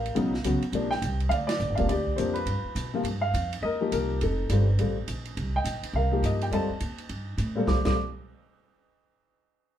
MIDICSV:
0, 0, Header, 1, 5, 480
1, 0, Start_track
1, 0, Tempo, 288878
1, 1230, Time_signature, 4, 2, 24, 8
1, 16254, End_track
2, 0, Start_track
2, 0, Title_t, "Grand piano"
2, 0, Program_c, 0, 0
2, 0, Note_on_c, 0, 70, 55
2, 0, Note_on_c, 0, 77, 74
2, 241, Note_off_c, 0, 70, 0
2, 247, Note_on_c, 0, 49, 68
2, 253, Note_on_c, 0, 54, 59
2, 263, Note_on_c, 0, 59, 56
2, 272, Note_on_c, 0, 63, 69
2, 524, Note_off_c, 0, 49, 0
2, 527, Note_off_c, 0, 54, 0
2, 532, Note_off_c, 0, 59, 0
2, 537, Note_off_c, 0, 63, 0
2, 739, Note_on_c, 0, 49, 53
2, 744, Note_on_c, 0, 54, 48
2, 759, Note_on_c, 0, 59, 49
2, 769, Note_on_c, 0, 66, 59
2, 967, Note_off_c, 0, 77, 0
2, 1010, Note_off_c, 0, 49, 0
2, 1013, Note_off_c, 0, 54, 0
2, 1020, Note_off_c, 0, 59, 0
2, 1025, Note_off_c, 0, 66, 0
2, 1213, Note_on_c, 0, 48, 61
2, 1231, Note_on_c, 0, 53, 51
2, 1235, Note_on_c, 0, 58, 53
2, 1247, Note_on_c, 0, 62, 65
2, 1487, Note_off_c, 0, 48, 0
2, 1496, Note_off_c, 0, 53, 0
2, 1498, Note_off_c, 0, 58, 0
2, 1504, Note_off_c, 0, 62, 0
2, 1506, Note_on_c, 0, 79, 92
2, 1961, Note_off_c, 0, 79, 0
2, 2147, Note_on_c, 0, 77, 92
2, 2215, Note_on_c, 0, 74, 65
2, 2230, Note_off_c, 0, 77, 0
2, 2420, Note_off_c, 0, 74, 0
2, 2445, Note_on_c, 0, 74, 96
2, 2914, Note_on_c, 0, 77, 73
2, 2952, Note_on_c, 0, 48, 62
2, 2960, Note_off_c, 0, 74, 0
2, 2961, Note_on_c, 0, 53, 53
2, 2978, Note_on_c, 0, 58, 55
2, 2978, Note_on_c, 0, 62, 67
2, 3110, Note_off_c, 0, 77, 0
2, 3124, Note_off_c, 0, 48, 0
2, 3129, Note_off_c, 0, 53, 0
2, 3137, Note_on_c, 0, 74, 83
2, 3138, Note_off_c, 0, 58, 0
2, 3138, Note_off_c, 0, 62, 0
2, 3190, Note_on_c, 0, 67, 59
2, 3589, Note_off_c, 0, 74, 0
2, 3593, Note_on_c, 0, 72, 68
2, 3616, Note_on_c, 0, 48, 55
2, 3627, Note_on_c, 0, 53, 52
2, 3637, Note_on_c, 0, 58, 53
2, 3638, Note_on_c, 0, 62, 60
2, 3882, Note_on_c, 0, 71, 79
2, 3888, Note_off_c, 0, 48, 0
2, 3894, Note_off_c, 0, 53, 0
2, 3898, Note_off_c, 0, 58, 0
2, 3899, Note_off_c, 0, 62, 0
2, 3916, Note_off_c, 0, 72, 0
2, 3938, Note_on_c, 0, 65, 46
2, 4063, Note_off_c, 0, 67, 0
2, 4796, Note_off_c, 0, 71, 0
2, 4824, Note_off_c, 0, 65, 0
2, 4878, Note_on_c, 0, 48, 62
2, 4881, Note_on_c, 0, 53, 58
2, 4897, Note_on_c, 0, 58, 54
2, 4906, Note_on_c, 0, 65, 69
2, 5047, Note_off_c, 0, 48, 0
2, 5048, Note_off_c, 0, 53, 0
2, 5056, Note_off_c, 0, 58, 0
2, 5061, Note_off_c, 0, 65, 0
2, 5341, Note_on_c, 0, 77, 91
2, 5797, Note_off_c, 0, 77, 0
2, 6027, Note_on_c, 0, 75, 88
2, 6061, Note_on_c, 0, 70, 67
2, 6324, Note_on_c, 0, 53, 60
2, 6334, Note_on_c, 0, 58, 53
2, 6339, Note_on_c, 0, 63, 58
2, 6346, Note_on_c, 0, 67, 68
2, 6473, Note_off_c, 0, 75, 0
2, 6501, Note_off_c, 0, 70, 0
2, 6526, Note_on_c, 0, 70, 73
2, 6951, Note_off_c, 0, 53, 0
2, 6956, Note_off_c, 0, 58, 0
2, 6958, Note_off_c, 0, 63, 0
2, 6962, Note_off_c, 0, 67, 0
2, 7010, Note_off_c, 0, 70, 0
2, 7020, Note_on_c, 0, 69, 67
2, 7041, Note_on_c, 0, 63, 48
2, 7480, Note_on_c, 0, 55, 52
2, 7490, Note_off_c, 0, 69, 0
2, 7494, Note_on_c, 0, 60, 48
2, 7504, Note_on_c, 0, 65, 47
2, 7515, Note_on_c, 0, 69, 55
2, 7739, Note_off_c, 0, 55, 0
2, 7746, Note_off_c, 0, 60, 0
2, 7751, Note_off_c, 0, 65, 0
2, 7756, Note_off_c, 0, 69, 0
2, 7909, Note_off_c, 0, 63, 0
2, 7959, Note_on_c, 0, 55, 51
2, 7970, Note_on_c, 0, 60, 44
2, 7983, Note_on_c, 0, 65, 47
2, 7989, Note_on_c, 0, 69, 53
2, 8219, Note_off_c, 0, 55, 0
2, 8224, Note_off_c, 0, 60, 0
2, 8231, Note_off_c, 0, 65, 0
2, 8234, Note_off_c, 0, 69, 0
2, 9239, Note_on_c, 0, 79, 85
2, 9249, Note_on_c, 0, 75, 59
2, 9897, Note_on_c, 0, 77, 83
2, 9905, Note_off_c, 0, 79, 0
2, 9910, Note_on_c, 0, 70, 61
2, 10121, Note_off_c, 0, 75, 0
2, 10160, Note_on_c, 0, 53, 55
2, 10164, Note_on_c, 0, 58, 50
2, 10174, Note_on_c, 0, 63, 50
2, 10188, Note_on_c, 0, 67, 59
2, 10377, Note_off_c, 0, 77, 0
2, 10394, Note_on_c, 0, 75, 77
2, 10675, Note_off_c, 0, 75, 0
2, 10676, Note_on_c, 0, 79, 80
2, 10752, Note_off_c, 0, 79, 0
2, 10784, Note_off_c, 0, 70, 0
2, 10790, Note_off_c, 0, 53, 0
2, 10792, Note_off_c, 0, 58, 0
2, 10797, Note_off_c, 0, 63, 0
2, 10804, Note_off_c, 0, 67, 0
2, 10829, Note_on_c, 0, 55, 59
2, 10838, Note_on_c, 0, 60, 53
2, 10850, Note_on_c, 0, 65, 49
2, 10854, Note_on_c, 0, 69, 64
2, 10855, Note_on_c, 0, 81, 88
2, 10864, Note_on_c, 0, 75, 63
2, 11095, Note_off_c, 0, 55, 0
2, 11099, Note_off_c, 0, 60, 0
2, 11105, Note_off_c, 0, 65, 0
2, 11107, Note_off_c, 0, 69, 0
2, 12217, Note_off_c, 0, 81, 0
2, 12221, Note_off_c, 0, 75, 0
2, 12554, Note_on_c, 0, 46, 59
2, 12563, Note_on_c, 0, 55, 55
2, 12565, Note_on_c, 0, 60, 57
2, 12571, Note_on_c, 0, 65, 59
2, 12591, Note_on_c, 0, 69, 71
2, 12712, Note_off_c, 0, 55, 0
2, 12715, Note_off_c, 0, 60, 0
2, 12717, Note_off_c, 0, 65, 0
2, 12723, Note_off_c, 0, 69, 0
2, 12726, Note_off_c, 0, 46, 0
2, 12737, Note_on_c, 0, 55, 57
2, 12740, Note_on_c, 0, 60, 56
2, 12742, Note_on_c, 0, 65, 54
2, 12748, Note_on_c, 0, 69, 67
2, 12762, Note_on_c, 0, 86, 69
2, 12921, Note_off_c, 0, 55, 0
2, 12921, Note_off_c, 0, 86, 0
2, 12922, Note_off_c, 0, 60, 0
2, 12923, Note_off_c, 0, 65, 0
2, 12926, Note_off_c, 0, 69, 0
2, 13042, Note_on_c, 0, 55, 62
2, 13050, Note_on_c, 0, 60, 50
2, 13054, Note_on_c, 0, 65, 53
2, 13063, Note_on_c, 0, 69, 64
2, 13077, Note_on_c, 0, 86, 73
2, 13210, Note_off_c, 0, 55, 0
2, 13215, Note_off_c, 0, 60, 0
2, 13217, Note_off_c, 0, 65, 0
2, 13221, Note_off_c, 0, 69, 0
2, 13235, Note_off_c, 0, 86, 0
2, 16254, End_track
3, 0, Start_track
3, 0, Title_t, "Upright bass"
3, 0, Program_c, 1, 32
3, 0, Note_on_c, 1, 33, 80
3, 241, Note_off_c, 1, 33, 0
3, 267, Note_on_c, 1, 35, 71
3, 729, Note_off_c, 1, 35, 0
3, 739, Note_on_c, 1, 37, 76
3, 1013, Note_off_c, 1, 37, 0
3, 1203, Note_on_c, 1, 34, 78
3, 1682, Note_off_c, 1, 34, 0
3, 1691, Note_on_c, 1, 36, 80
3, 2152, Note_off_c, 1, 36, 0
3, 2162, Note_on_c, 1, 38, 75
3, 2641, Note_off_c, 1, 38, 0
3, 2654, Note_on_c, 1, 34, 83
3, 2813, Note_off_c, 1, 34, 0
3, 2813, Note_on_c, 1, 31, 47
3, 2963, Note_off_c, 1, 31, 0
3, 2973, Note_on_c, 1, 29, 60
3, 3126, Note_off_c, 1, 29, 0
3, 3136, Note_on_c, 1, 38, 75
3, 3608, Note_off_c, 1, 38, 0
3, 3632, Note_on_c, 1, 41, 74
3, 4075, Note_off_c, 1, 41, 0
3, 4085, Note_on_c, 1, 43, 71
3, 4370, Note_off_c, 1, 43, 0
3, 4572, Note_on_c, 1, 47, 74
3, 5032, Note_off_c, 1, 47, 0
3, 5042, Note_on_c, 1, 43, 75
3, 5520, Note_off_c, 1, 43, 0
3, 5545, Note_on_c, 1, 41, 83
3, 6011, Note_off_c, 1, 41, 0
3, 6020, Note_on_c, 1, 39, 71
3, 6489, Note_off_c, 1, 39, 0
3, 6514, Note_on_c, 1, 36, 83
3, 6976, Note_off_c, 1, 36, 0
3, 7006, Note_on_c, 1, 29, 76
3, 7459, Note_off_c, 1, 29, 0
3, 7469, Note_on_c, 1, 31, 78
3, 7934, Note_off_c, 1, 31, 0
3, 7957, Note_on_c, 1, 33, 75
3, 8418, Note_off_c, 1, 33, 0
3, 8438, Note_on_c, 1, 34, 79
3, 8898, Note_off_c, 1, 34, 0
3, 8923, Note_on_c, 1, 36, 80
3, 9367, Note_off_c, 1, 36, 0
3, 9377, Note_on_c, 1, 34, 81
3, 9656, Note_off_c, 1, 34, 0
3, 9860, Note_on_c, 1, 36, 78
3, 10330, Note_off_c, 1, 36, 0
3, 10346, Note_on_c, 1, 43, 77
3, 10813, Note_off_c, 1, 43, 0
3, 10821, Note_on_c, 1, 41, 69
3, 11099, Note_off_c, 1, 41, 0
3, 11306, Note_on_c, 1, 39, 79
3, 11773, Note_off_c, 1, 39, 0
3, 11789, Note_on_c, 1, 43, 64
3, 12246, Note_off_c, 1, 43, 0
3, 12256, Note_on_c, 1, 45, 78
3, 12729, Note_off_c, 1, 45, 0
3, 12756, Note_on_c, 1, 34, 82
3, 12919, Note_off_c, 1, 34, 0
3, 13043, Note_on_c, 1, 34, 85
3, 13217, Note_off_c, 1, 34, 0
3, 16254, End_track
4, 0, Start_track
4, 0, Title_t, "Muted upright bass strokes"
4, 1023, Note_on_c, 9, 29, 37
4, 1189, Note_off_c, 9, 29, 0
4, 4394, Note_on_c, 9, 29, 34
4, 4560, Note_off_c, 9, 29, 0
4, 9682, Note_on_c, 9, 29, 37
4, 9848, Note_off_c, 9, 29, 0
4, 11134, Note_on_c, 9, 29, 37
4, 11300, Note_off_c, 9, 29, 0
4, 16254, End_track
5, 0, Start_track
5, 0, Title_t, "Drums"
5, 93, Note_on_c, 9, 51, 39
5, 259, Note_off_c, 9, 51, 0
5, 265, Note_on_c, 9, 51, 52
5, 431, Note_off_c, 9, 51, 0
5, 563, Note_on_c, 9, 38, 39
5, 729, Note_off_c, 9, 38, 0
5, 736, Note_on_c, 9, 44, 57
5, 736, Note_on_c, 9, 51, 62
5, 902, Note_off_c, 9, 44, 0
5, 902, Note_off_c, 9, 51, 0
5, 1038, Note_on_c, 9, 51, 40
5, 1204, Note_off_c, 9, 51, 0
5, 1214, Note_on_c, 9, 51, 52
5, 1380, Note_off_c, 9, 51, 0
5, 1513, Note_on_c, 9, 38, 33
5, 1679, Note_off_c, 9, 38, 0
5, 1698, Note_on_c, 9, 44, 43
5, 1698, Note_on_c, 9, 51, 59
5, 1864, Note_off_c, 9, 44, 0
5, 1864, Note_off_c, 9, 51, 0
5, 1998, Note_on_c, 9, 51, 40
5, 2164, Note_off_c, 9, 51, 0
5, 2182, Note_on_c, 9, 51, 55
5, 2348, Note_off_c, 9, 51, 0
5, 2472, Note_on_c, 9, 38, 71
5, 2472, Note_on_c, 9, 51, 62
5, 2638, Note_off_c, 9, 38, 0
5, 2638, Note_off_c, 9, 51, 0
5, 2646, Note_on_c, 9, 44, 51
5, 2813, Note_off_c, 9, 44, 0
5, 2948, Note_on_c, 9, 51, 39
5, 2954, Note_on_c, 9, 36, 48
5, 3114, Note_off_c, 9, 51, 0
5, 3120, Note_off_c, 9, 36, 0
5, 3141, Note_on_c, 9, 51, 53
5, 3307, Note_off_c, 9, 51, 0
5, 3440, Note_on_c, 9, 36, 42
5, 3606, Note_off_c, 9, 36, 0
5, 3621, Note_on_c, 9, 44, 49
5, 3621, Note_on_c, 9, 51, 55
5, 3787, Note_off_c, 9, 44, 0
5, 3787, Note_off_c, 9, 51, 0
5, 3912, Note_on_c, 9, 51, 40
5, 4078, Note_off_c, 9, 51, 0
5, 4096, Note_on_c, 9, 51, 53
5, 4263, Note_off_c, 9, 51, 0
5, 4583, Note_on_c, 9, 44, 52
5, 4583, Note_on_c, 9, 51, 58
5, 4749, Note_off_c, 9, 44, 0
5, 4749, Note_off_c, 9, 51, 0
5, 5062, Note_on_c, 9, 51, 55
5, 5228, Note_off_c, 9, 51, 0
5, 5557, Note_on_c, 9, 44, 44
5, 5557, Note_on_c, 9, 51, 62
5, 5723, Note_off_c, 9, 44, 0
5, 5723, Note_off_c, 9, 51, 0
5, 5859, Note_on_c, 9, 51, 56
5, 6025, Note_off_c, 9, 51, 0
5, 6514, Note_on_c, 9, 44, 55
5, 6514, Note_on_c, 9, 51, 63
5, 6680, Note_off_c, 9, 44, 0
5, 6680, Note_off_c, 9, 51, 0
5, 6997, Note_on_c, 9, 51, 54
5, 7163, Note_off_c, 9, 51, 0
5, 7470, Note_on_c, 9, 44, 52
5, 7470, Note_on_c, 9, 51, 58
5, 7636, Note_off_c, 9, 44, 0
5, 7636, Note_off_c, 9, 51, 0
5, 7953, Note_on_c, 9, 51, 50
5, 8119, Note_off_c, 9, 51, 0
5, 8435, Note_on_c, 9, 44, 44
5, 8435, Note_on_c, 9, 51, 57
5, 8601, Note_off_c, 9, 44, 0
5, 8601, Note_off_c, 9, 51, 0
5, 8730, Note_on_c, 9, 51, 38
5, 8896, Note_off_c, 9, 51, 0
5, 8924, Note_on_c, 9, 51, 50
5, 9090, Note_off_c, 9, 51, 0
5, 9394, Note_on_c, 9, 44, 54
5, 9394, Note_on_c, 9, 51, 59
5, 9560, Note_off_c, 9, 44, 0
5, 9560, Note_off_c, 9, 51, 0
5, 9693, Note_on_c, 9, 51, 57
5, 9860, Note_off_c, 9, 51, 0
5, 10363, Note_on_c, 9, 44, 47
5, 10363, Note_on_c, 9, 51, 56
5, 10529, Note_off_c, 9, 44, 0
5, 10529, Note_off_c, 9, 51, 0
5, 10658, Note_on_c, 9, 51, 41
5, 10824, Note_off_c, 9, 51, 0
5, 10841, Note_on_c, 9, 51, 49
5, 11007, Note_off_c, 9, 51, 0
5, 11306, Note_on_c, 9, 44, 43
5, 11306, Note_on_c, 9, 51, 52
5, 11472, Note_off_c, 9, 44, 0
5, 11472, Note_off_c, 9, 51, 0
5, 11603, Note_on_c, 9, 51, 36
5, 11769, Note_off_c, 9, 51, 0
5, 11785, Note_on_c, 9, 51, 48
5, 11951, Note_off_c, 9, 51, 0
5, 12267, Note_on_c, 9, 44, 47
5, 12267, Note_on_c, 9, 51, 52
5, 12433, Note_off_c, 9, 44, 0
5, 12433, Note_off_c, 9, 51, 0
5, 12748, Note_on_c, 9, 38, 67
5, 12754, Note_on_c, 9, 36, 81
5, 12914, Note_off_c, 9, 38, 0
5, 12920, Note_off_c, 9, 36, 0
5, 13046, Note_on_c, 9, 38, 63
5, 13046, Note_on_c, 9, 49, 66
5, 13050, Note_on_c, 9, 36, 83
5, 13213, Note_off_c, 9, 38, 0
5, 13213, Note_off_c, 9, 49, 0
5, 13216, Note_off_c, 9, 36, 0
5, 16254, End_track
0, 0, End_of_file